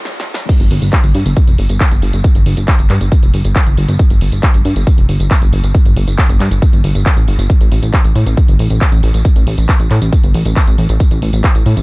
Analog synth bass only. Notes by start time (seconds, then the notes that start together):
0.60 G1
0.71 G1
0.82 G1
1.04 G1
1.15 G2
1.26 G1
1.48 F1
1.59 G1
1.70 G1
1.92 G1
2.02 G1
2.13 G1
2.35 G1
2.46 G1
2.57 G1
2.79 G1
2.90 G2
3.01 G1
3.23 F1
3.34 G1
3.45 G1
3.67 G1
3.77 G1
3.88 G1
4.10 G1
4.21 G1
4.32 G1
4.54 G1
4.65 G2
4.76 G1
4.98 F1
5.09 G1
5.20 G1
5.42 G1
5.53 G1
5.63 G1
5.85 G1
5.96 G1
6.07 G1
6.29 G1
6.40 G2
6.51 G1
6.73 G1
6.84 G1
6.95 G1
7.17 A1
7.28 G1
7.39 G1
7.61 A1
7.72 A1
7.83 A1
8.04 A1
8.15 A2
8.26 A1
8.48 G1
8.59 A1
8.70 A1
8.92 A1
9.03 A1
9.14 A1
9.36 A1
9.47 A1
9.58 A1
9.80 A1
9.91 A2
10.02 A1
10.24 G1
10.35 A1
10.46 A1
10.67 A1
10.78 A1
10.89 A1
11.11 A1
11.22 A1
11.33 A1
11.55 A1
11.66 A2
11.77 A1